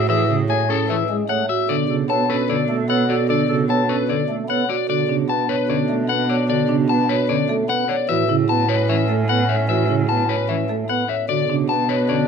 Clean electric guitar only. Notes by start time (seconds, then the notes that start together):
0.10 E5
0.50 G#5
0.70 A4
0.90 E5
1.29 F#5
1.49 E5
1.69 D5
2.10 A5
2.30 B4
2.50 D5
2.90 F#5
3.10 D5
3.30 D5
3.70 A5
3.89 B4
4.09 D5
4.50 F#5
4.70 D5
4.90 D5
5.29 A5
5.49 B4
5.69 D5
6.09 F#5
6.29 D5
6.50 D5
6.89 A5
7.09 B4
7.29 D5
7.69 F#5
7.89 D5
8.09 E5
8.49 A5
8.69 B4
8.89 E5
9.29 F#5
9.49 E5
9.69 E5
10.09 A5
10.29 B4
10.49 E5
10.89 F#5
11.09 E5
11.29 D5
11.69 A5
11.89 B4
12.09 D5